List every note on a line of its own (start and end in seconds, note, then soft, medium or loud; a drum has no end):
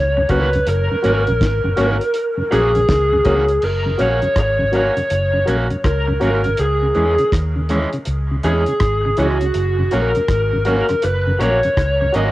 0.00 0.25 C#2 medium
0.00 0.31 C#5 loud
0.17 0.22 F#2 medium
0.17 0.22 C#3 medium
0.17 muted clean electric guitar stroke medium
0.29 0.61 C#2 medium
0.29 0.40 F#3 medium
0.29 0.48 A#3 medium
0.29 0.40 A#3 medium
0.29 0.49 C#4 medium
0.29 0.40 C#4 medium
0.29 0.54 F#4 medium
0.29 0.49 F#4 loud
0.29 0.55 A#4 medium
0.29 0.65 B4 medium
0.29 0.55 C#5 loud
0.29 kick medium
0.29 closed hi-hat medium
0.53 0.59 F#2 medium
0.53 0.60 C#3 medium
0.53 closed hi-hat soft
0.67 0.87 F#1 loud
0.67 2.86 A#4 medium
0.67 closed hi-hat medium
0.92 0.96 F#2 medium
0.92 0.96 C#3 medium
1.03 1.25 G#1 medium
1.03 1.13 F#3 medium
1.03 1.13 A#3 medium
1.03 1.23 A#3 medium
1.03 1.13 C#4 medium
1.03 1.23 C#4 loud
1.03 1.28 F#4 medium
1.03 1.23 F#4 loud
1.03 1.29 A#4 medium
1.03 1.29 C#5 loud
1.03 closed hi-hat medium
1.27 1.39 A#1 medium
1.27 1.33 F#2 medium
1.27 1.33 C#3 medium
1.27 closed hi-hat soft
1.41 1.61 G#1 medium
1.41 kick loud
1.41 snare loud
1.41 closed hi-hat loud
1.64 1.76 F#1 medium
1.64 1.70 F#2 medium
1.64 1.70 C#3 medium
1.77 1.98 G#1 medium
1.77 1.87 F#3 medium
1.77 1.96 A#3 medium
1.77 1.87 A#3 medium
1.77 1.87 C#4 medium
1.77 1.96 C#4 medium
1.77 2.02 F#4 medium
1.77 1.97 F#4 medium
1.77 2.02 A#4 medium
1.77 2.03 C#5 loud
1.77 closed hi-hat medium
2.01 closed hi-hat medium
2.14 closed hi-hat medium
2.37 2.43 F#2 medium
2.37 2.43 C#3 medium
2.51 2.84 A#1 medium
2.51 2.61 F#3 medium
2.51 2.70 A#3 medium
2.51 2.61 A#3 medium
2.51 2.61 C#4 medium
2.51 2.71 C#4 loud
2.51 2.76 F#4 medium
2.51 2.71 F#4 medium
2.51 3.66 G#4 medium
2.51 2.74 A#4 medium
2.51 2.74 C#5 loud
2.51 closed hi-hat medium
2.75 2.81 F#2 medium
2.75 2.81 C#3 medium
2.75 2.81 A#4 soft
2.75 2.80 C#5 soft
2.75 closed hi-hat medium
2.89 3.21 C#2 medium
2.89 kick loud
2.89 snare loud
2.89 closed hi-hat loud
3.13 3.18 F#2 medium
3.13 3.18 C#3 medium
3.13 muted clean electric guitar stroke soft
3.25 3.57 C#2 medium
3.25 3.35 F#3 medium
3.25 3.44 A#3 medium
3.25 3.35 A#3 medium
3.25 3.44 C#4 medium
3.25 3.35 C#4 medium
3.25 3.50 F#4 medium
3.25 3.45 F#4 medium
3.25 3.50 A#4 medium
3.25 3.51 C#5 loud
3.25 kick medium
3.25 closed hi-hat medium
3.49 closed hi-hat medium
3.62 3.95 F#1 loud
3.62 4.01 A#4 loud
3.62 crash medium
3.86 3.91 F#2 medium
3.86 3.91 C#3 medium
3.98 4.20 A#1 medium
3.98 4.08 F#3 medium
3.98 4.09 A#3 medium
3.98 4.18 A#3 medium
3.98 4.09 C#4 medium
3.98 4.19 C#4 medium
3.98 4.24 F#4 medium
3.98 4.19 F#4 medium
3.98 4.24 A#4 medium
3.98 4.24 C#5 medium
3.98 4.38 C#5 medium
3.98 closed hi-hat medium
4.22 4.28 F#2 medium
4.22 4.28 C#3 medium
4.22 closed hi-hat soft
4.36 4.88 G#1 medium
4.36 4.75 C#5 medium
4.36 kick loud
4.36 cross-stick loud
4.36 closed hi-hat loud
4.59 4.65 F#2 medium
4.59 4.65 C#3 medium
4.72 4.82 F#3 medium
4.72 4.82 A#3 medium
4.72 4.92 A#3 medium
4.72 4.82 C#4 medium
4.72 4.93 C#4 medium
4.72 4.98 F#4 medium
4.72 4.93 F#4 medium
4.72 4.98 A#4 medium
4.72 4.99 C#5 medium
4.72 closed hi-hat medium
4.76 5.45 C#5 medium
4.96 5.02 F#2 medium
4.96 5.02 C#3 medium
4.96 closed hi-hat medium
5.10 5.43 F#1 medium
5.10 closed hi-hat medium
5.33 5.39 F#2 medium
5.33 5.39 C#3 medium
5.46 5.68 A#1 medium
5.46 5.57 F#3 medium
5.46 5.66 A#3 medium
5.46 5.57 A#3 medium
5.46 5.57 C#4 medium
5.46 5.66 C#4 medium
5.46 5.72 F#4 medium
5.46 5.67 F#4 medium
5.46 5.69 A#4 medium
5.46 5.69 C#5 loud
5.46 closed hi-hat medium
5.70 5.77 F#2 medium
5.70 5.76 C#3 medium
5.70 closed hi-hat soft
5.84 6.17 C#2 medium
5.84 6.61 A#4 loud
5.84 kick loud
5.84 cross-stick loud
5.84 closed hi-hat medium
6.07 6.14 F#2 medium
6.07 6.13 C#3 medium
6.07 muted clean electric guitar stroke soft
6.20 6.54 G#1 medium
6.20 6.30 F#3 medium
6.20 6.31 A#3 medium
6.20 6.40 A#3 medium
6.20 6.31 C#4 medium
6.20 6.40 C#4 medium
6.20 6.46 F#4 medium
6.20 6.41 F#4 medium
6.20 6.46 A#4 medium
6.20 6.47 C#5 medium
6.20 closed hi-hat medium
6.44 6.51 F#2 medium
6.44 6.51 C#3 medium
6.44 closed hi-hat soft
6.57 6.91 C#2 loud
6.57 7.29 G#4 medium
6.57 closed hi-hat medium
6.82 6.88 C#3 medium
6.95 7.16 E2 medium
6.95 7.05 E3 medium
6.95 7.14 E3 medium
6.95 7.05 G#3 medium
6.95 7.15 G#3 medium
6.95 7.05 C#4 medium
6.95 7.15 C#4 medium
6.95 7.20 E4 medium
6.95 7.20 G#4 medium
6.95 7.21 C#5 medium
6.95 closed hi-hat medium
7.18 7.25 C#3 medium
7.18 closed hi-hat soft
7.32 7.85 D#2 medium
7.32 kick loud
7.32 cross-stick loud
7.32 closed hi-hat loud
7.56 7.61 C#3 medium
7.69 7.79 E3 medium
7.69 7.89 E3 medium
7.69 7.79 G#3 medium
7.69 7.89 G#3 medium
7.69 7.79 C#4 medium
7.69 7.89 C#4 medium
7.69 7.95 E4 medium
7.69 7.95 G#4 medium
7.69 7.95 C#5 loud
7.69 closed hi-hat medium
7.93 7.99 C#3 medium
7.93 closed hi-hat medium
8.05 8.39 C#2 medium
8.05 closed hi-hat medium
8.31 8.36 C#3 medium
8.43 8.64 E2 loud
8.43 8.62 E3 medium
8.43 8.53 E3 medium
8.43 8.53 G#3 medium
8.43 8.63 G#3 medium
8.43 8.53 C#4 medium
8.43 8.63 C#4 medium
8.43 8.69 E4 medium
8.43 8.66 G#4 medium
8.43 9.20 G#4 medium
8.43 8.66 C#5 medium
8.43 closed hi-hat medium
8.66 8.73 C#3 medium
8.66 8.73 G#4 soft
8.66 8.73 C#5 soft
8.66 closed hi-hat soft
8.80 9.13 G#1 medium
8.80 kick loud
8.80 cross-stick loud
8.80 closed hi-hat medium
9.05 9.10 C#3 medium
9.05 muted clean electric guitar stroke soft
9.17 9.50 C#2 medium
9.17 9.27 E3 medium
9.17 9.36 E3 medium
9.17 9.27 G#3 medium
9.17 9.37 G#3 medium
9.17 9.27 C#4 medium
9.17 9.37 C#4 medium
9.17 9.43 E4 medium
9.17 9.95 F#4 medium
9.17 9.43 G#4 medium
9.17 9.43 C#5 medium
9.17 closed hi-hat medium
9.41 9.47 C#3 medium
9.41 closed hi-hat soft
9.54 9.87 F#1 loud
9.54 closed hi-hat medium
9.78 9.84 F#2 medium
9.78 9.84 C#3 medium
9.91 10.13 A#1 medium
9.91 10.01 F#3 medium
9.91 10.11 A#3 medium
9.91 10.02 A#3 medium
9.91 10.02 C#4 medium
9.91 10.11 C#4 medium
9.91 10.17 F#4 medium
9.91 10.11 F#4 medium
9.91 10.17 A#4 medium
9.91 10.63 A#4 medium
9.91 10.17 C#5 medium
9.91 closed hi-hat medium
10.15 10.21 F#2 medium
10.15 10.21 C#3 medium
10.15 closed hi-hat soft
10.28 10.81 G#1 medium
10.28 kick loud
10.28 cross-stick loud
10.28 closed hi-hat loud
10.53 10.58 F#2 medium
10.53 10.58 C#3 medium
10.65 10.76 F#3 medium
10.65 10.85 A#3 medium
10.65 10.76 A#3 medium
10.65 10.85 C#4 medium
10.65 10.76 C#4 medium
10.65 10.91 F#4 medium
10.65 10.85 F#4 medium
10.65 10.91 A#4 medium
10.65 11.01 A#4 medium
10.65 10.91 C#5 loud
10.65 closed hi-hat medium
10.89 10.95 F#2 medium
10.89 10.95 C#3 medium
10.89 cross-stick medium
10.89 closed hi-hat medium
11.02 11.36 F#1 loud
11.02 11.41 B4 medium
11.02 closed hi-hat medium
11.27 11.32 F#2 medium
11.27 11.32 C#3 medium
11.39 11.60 A#1 medium
11.39 11.50 F#3 medium
11.39 11.58 A#3 medium
11.39 11.50 A#3 medium
11.39 11.59 C#4 medium
11.39 11.50 C#4 medium
11.39 11.65 F#4 medium
11.39 11.59 F#4 medium
11.39 11.62 A#4 medium
11.39 11.62 C#5 medium
11.39 12.15 C#5 loud
11.39 closed hi-hat medium
11.63 11.69 F#2 medium
11.63 11.69 C#3 medium
11.63 closed hi-hat medium
11.77 12.09 C#2 medium
11.77 kick loud
11.77 cross-stick loud
11.77 closed hi-hat loud
12.01 12.06 F#2 medium
12.01 12.06 C#3 medium
12.01 muted clean electric guitar stroke soft
12.12 12.32 G#1 medium
12.12 12.24 F#3 medium
12.12 12.32 A#3 medium
12.12 12.24 A#3 medium
12.12 12.32 C#4 loud
12.12 12.24 C#4 medium
12.12 12.32 F#4 medium
12.12 12.32 F#4 loud
12.12 12.32 A#4 medium
12.12 12.32 C#5 loud
12.12 12.25 D#5 loud
12.12 closed hi-hat medium